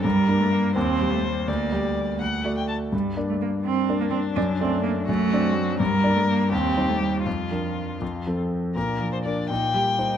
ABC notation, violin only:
X:1
M:6/8
L:1/16
Q:3/8=83
K:Gm
V:1 name="Violin"
B6 c6 | d6 ^f3 g a2 | z6 D6- | D6 ^F6 |
[K:Bb] B6 G6 | F8- F z3 | B3 c d2 g6 |]